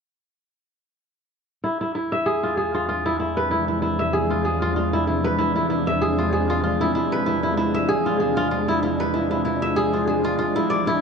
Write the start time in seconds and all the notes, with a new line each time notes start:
1.64 E2 C3 F3 G#3 D4 E4
1.81 E4
1.95 E4
2.12 E5
2.26 G#4
2.43 F4
2.57 G#4
2.74 F4
2.89 F4
3.06 E4
3.20 E4
3.37 B4
3.51 E4
3.68 E4
3.82 E4
3.99 E5
4.13 G#4
4.30 F4
4.45 G#4
4.62 F4
4.76 F4
4.93 E4
5.07 E4
5.24 B4
5.38 E4
5.56 E4
5.70 E4
5.87 E5
6.01 G#4
6.18 F4
6.33 G#4
6.50 F4
6.64 F4
6.81 E4
6.95 E4
7.12 B4
7.26 E4
7.43 E4
7.57 E4
7.74 E5
7.89 G#4
8.06 F4
8.20 G#4
8.37 F4
8.51 F4
8.68 E4
8.83 E4
9.00 B4
9.14 E4
9.31 E4
9.45 E4
9.62 E5
9.76 G#4
9.93 F4
10.07 G#4
10.24 F4
10.39 F4
10.56 E4
10.70 D5
10.87 E4